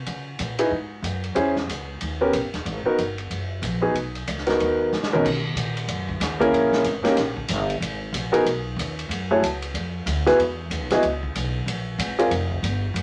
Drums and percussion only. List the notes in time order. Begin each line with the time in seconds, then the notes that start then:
0.06 ride
0.39 hi-hat pedal, ride
0.59 ride
1.04 hi-hat pedal, ride
1.24 ride
1.36 ride
1.56 snare
1.69 hi-hat pedal, ride
2.01 ride
2.33 hi-hat pedal, ride
2.54 snare, ride
2.66 ride
2.98 hi-hat pedal, ride
3.18 ride
3.31 ride
3.63 hi-hat pedal, ride
3.95 ride
4.15 ride
4.27 hi-hat pedal, ride
4.38 snare
4.47 snare, ride
4.60 ride
4.92 snare, hi-hat pedal
5.03 snare
5.14 mid tom
5.25 kick, crash
5.57 hi-hat pedal, ride
5.77 ride
5.88 ride
6.09 kick
6.21 snare, hi-hat pedal, ride
6.41 kick, ride
6.54 ride
6.73 snare
6.84 hi-hat pedal, ride
7.05 snare, ride
7.17 snare, ride
7.37 kick
7.48 hi-hat pedal, ride
7.70 ride
7.82 ride
8.14 hi-hat pedal, ride
8.34 ride
8.46 ride
8.79 hi-hat pedal, ride
8.99 ride
9.11 ride
9.44 hi-hat pedal, ride
9.62 ride
9.75 ride
10.07 hi-hat pedal, ride
10.27 snare, ride
10.40 ride
10.71 hi-hat pedal, ride
10.90 snare, ride
11.03 ride
11.23 kick
11.35 hi-hat pedal, ride
11.68 ride
11.99 hi-hat pedal, ride
12.19 ride
12.31 ride
12.51 kick
12.64 hi-hat pedal, ride
12.96 ride